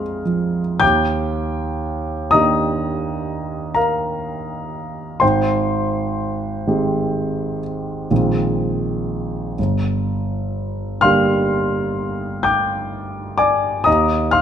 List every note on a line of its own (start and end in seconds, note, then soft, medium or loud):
0.00 0.78 A#1 soft
0.00 0.84 G#3 soft
0.00 0.84 C4 soft
0.00 0.22 F4 soft
0.00 0.22 A#4 soft
0.00 0.22 D5 soft
0.00 0.84 D#5 soft
0.00 0.77 F5 soft
0.00 0.79 G#5 soft
0.00 0.84 A#5 soft
0.00 0.77 C6 soft
0.00 0.85 D#6 medium
0.00 0.80 F6 medium
0.25 0.81 F3 soft
0.80 2.28 D#2 soft
0.80 2.28 G5 medium
0.80 2.28 D6 medium
0.80 2.31 G6 medium
2.31 5.18 D#3 soft
2.31 5.18 A#3 soft
2.31 5.19 D4 soft
2.31 5.19 G4 soft
2.31 3.73 D#5 medium
2.31 3.72 A#5 medium
2.31 3.76 D#6 medium
3.75 5.18 A#4 soft
3.75 5.18 F5 soft
3.75 5.21 A#5 medium
5.20 6.64 G#1 soft
5.20 7.57 C5 medium
5.20 7.57 G5 medium
5.20 7.61 C6 medium
6.67 8.06 D#3 soft
6.67 8.06 G#3 soft
6.67 8.07 C4 soft
6.67 8.07 G4 soft
8.11 9.54 A#1 soft
8.11 9.54 D#3 soft
8.11 9.54 G#3 soft
8.11 9.55 C4 soft
8.11 9.55 F4 soft
9.59 11.00 G1 soft
11.01 13.82 D3 soft
11.01 13.83 G3 soft
11.01 13.83 A#3 soft
11.01 13.83 G4 soft
11.01 12.41 F5 medium
11.01 12.41 C6 medium
11.01 12.44 F6 medium
12.43 13.35 G5 medium
12.43 13.35 D6 medium
12.43 13.38 G6 medium
13.38 13.83 D5 medium
13.38 13.83 G#5 medium
13.38 13.86 D6 medium
13.84 14.42 D#2 soft
13.84 14.30 D#5 medium
13.84 14.30 A#5 medium
13.84 14.33 D#6 medium
14.31 14.42 F5 medium
14.31 14.42 C6 medium
14.31 14.42 F6 medium